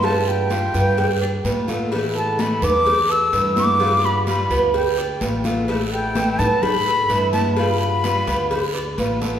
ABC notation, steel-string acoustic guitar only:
X:1
M:4/4
L:1/8
Q:1/4=127
K:Gmix
V:1 name="Steel-string acoustic guitar"
[G,B,F]2 [G,B,F] [B,F] z2 [G,B,F] [B,F] | [E,A,B,E]2 [E,A,B,E] [A,B,E] z2 [E,A,B,E] [A,B,E] | [G,B,F]2 [G,B,F] [B,F] z2 [G,B,F] [B,F] | [E,A,B,E]2 [E,A,B,E] [A,B,E] z2 [E,A,B,E] [A,B,E] |
[G,B,F]2 [G,B,F] [B,F] z2 [G,B,F] [B,F] |]